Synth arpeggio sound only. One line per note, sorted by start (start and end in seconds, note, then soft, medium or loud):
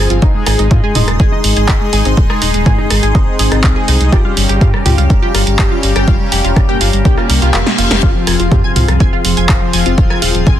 0.10 0.18 F4 medium
0.10 0.18 F5 medium
0.22 0.30 D#4 medium
0.22 0.30 D#5 medium
0.47 0.58 G#4 loud
0.47 0.58 G#5 medium
0.59 0.67 D#4 medium
0.59 0.67 D#5 medium
0.84 0.95 G#4 loud
0.84 0.95 G#5 medium
0.96 1.03 D#4 medium
0.96 1.03 D#5 medium
1.20 1.32 G#4 loud
1.20 1.32 G#5 medium
1.32 1.40 D#4 medium
1.32 1.40 D#5 medium
1.57 1.68 G#4 loud
1.57 1.68 G#5 medium
1.69 1.77 D#4 medium
1.69 1.77 D#5 medium
1.93 2.05 G#4 loud
1.93 2.05 G#5 medium
2.05 2.13 D#4 medium
2.05 2.13 D#5 medium
2.30 2.41 G#4 loud
2.30 2.41 G#5 medium
2.42 2.50 D#4 medium
2.42 2.50 D#5 medium
2.66 2.78 G#4 loud
2.66 2.78 G#5 medium
2.78 2.86 D#4 medium
2.78 2.86 D#5 medium
3.03 3.14 G#4 loud
3.03 3.14 G#5 medium
3.15 3.23 D#4 medium
3.15 3.23 D#5 medium
3.39 3.51 G#4 loud
3.39 3.51 G#5 medium
3.52 3.59 D#4 medium
3.52 3.59 D#5 medium
3.76 3.87 G#4 loud
3.76 3.87 G#5 medium
3.88 3.96 D#4 medium
3.88 3.96 D#5 medium
4.12 4.24 G4 loud
4.12 4.24 G5 medium
4.25 4.32 F4 medium
4.25 4.32 F5 medium
4.49 4.61 G4 loud
4.49 4.61 G5 medium
4.61 4.69 F4 medium
4.61 4.69 F5 medium
4.86 4.97 G4 loud
4.86 4.97 G5 medium
4.98 5.06 F4 medium
4.98 5.06 F5 medium
5.22 5.34 G4 loud
5.22 5.34 G5 medium
5.34 5.42 F4 medium
5.34 5.42 F5 medium
5.59 5.71 G4 loud
5.59 5.71 G5 medium
5.71 5.79 F4 medium
5.71 5.79 F5 medium
5.96 6.07 G4 loud
5.96 6.07 G5 medium
6.08 6.16 F4 medium
6.08 6.16 F5 medium
6.32 6.44 G4 loud
6.32 6.44 G5 medium
6.44 6.52 F4 medium
6.44 6.52 F5 medium
6.69 6.80 G4 loud
6.69 6.80 G5 medium
6.81 6.89 F4 medium
6.81 6.89 F5 medium
7.05 7.17 G4 loud
7.05 7.17 G5 medium
7.18 7.25 F4 medium
7.18 7.25 F5 medium
7.30 7.34 A#4 medium
7.30 7.34 A#5 medium
7.42 7.50 F4 loud
7.42 7.50 F5 medium
7.54 7.59 F4 medium
7.54 7.59 F5 medium
7.78 7.90 F4 loud
7.78 7.90 F5 medium
7.91 7.95 A#4 medium
7.91 7.95 A#5 medium
8.03 8.11 F4 medium
8.03 8.11 F5 medium
8.27 8.35 G#5 medium
8.27 8.35 G#6 medium
8.40 8.47 F4 medium
8.40 8.47 F5 medium
8.64 8.72 G#5 medium
8.64 8.72 G#6 medium
8.76 8.84 F4 medium
8.76 8.84 F5 medium
9.00 9.08 G#5 medium
9.00 9.08 G#6 medium
9.13 9.20 F4 medium
9.13 9.20 F5 medium
9.37 9.45 G#5 medium
9.37 9.45 G#6 medium
9.49 9.57 F4 medium
9.49 9.57 F5 medium
9.73 9.81 G#5 medium
9.73 9.81 G#6 medium
9.86 9.93 F4 medium
9.86 9.94 F5 medium
10.10 10.18 G#5 medium
10.10 10.18 G#6 medium
10.22 10.30 F4 medium
10.22 10.30 F5 medium
10.47 10.54 G#5 medium
10.47 10.54 G#6 medium